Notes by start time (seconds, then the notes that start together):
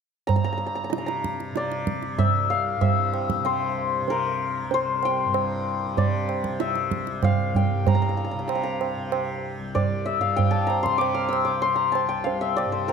0.27 G2 A#5, tabla tin, tabla ge
0.36 A#5
0.44 A#5
0.53 A#5
0.58 A#5
0.66 A#5
0.75 A#5
0.84 A#5
0.90 C3 A#5, tabla te
0.98 A#5
1.06 A#5, tabla te
1.24 tabla ke
1.40 tabla te
1.52 C3, tabla te
1.57 D5
1.72 tabla te
1.87 tabla ke
2.03 tabla te
2.15 C2 E5, tabla tin, tabla ge
2.50 F5
2.76 G2
2.81 E5, tabla tin, tabla ge
3.14 tabla na
3.30 tabla ke
3.40 C3
3.45 C5, tabla na
4.02 C3
4.08 A#4, tabla tin
4.64 C2
4.71 C5, tabla tin
5.03 G5, tabla na
5.25 G2
5.34 tabla na
5.86 C3
5.97 D5, tabla tin, tabla ge
6.29 tabla na
6.44 tabla ke
6.50 C3
6.60 E5, tabla te
6.76 tabla te
6.91 tabla ke
7.07 C2, tabla te
7.23 F5, tabla na, tabla ge
7.55 G5, tabla ge
7.74 G2
7.87 A#5, tabla tin, tabla ge
7.95 A#5
8.02 A#5
8.09 A#5
8.17 A#5
8.24 A#5
8.31 C3 A#5
8.39 A#5
8.48 A#5, tabla na
8.55 A#5
8.64 A#5
8.81 tabla na
8.97 C3
9.12 tabla na
9.59 C2
9.75 D5, tabla tin, tabla ge
10.06 E5
10.19 G2 F5
10.36 G5, tabla tin, tabla ge
10.51 A5
10.67 A#5, tabla na
10.83 C3 C6, tabla ke
10.98 D6, tabla na
11.15 F6
11.29 E6
11.33 tabla na
11.45 C3 D6
11.62 C6, tabla tin
11.76 A#5
11.92 A5, tabla na
12.06 C2 G5
12.24 F5, tabla tin
12.41 E5
12.56 D5, tabla na
12.65 G2
12.72 C5
12.88 A#4, tabla na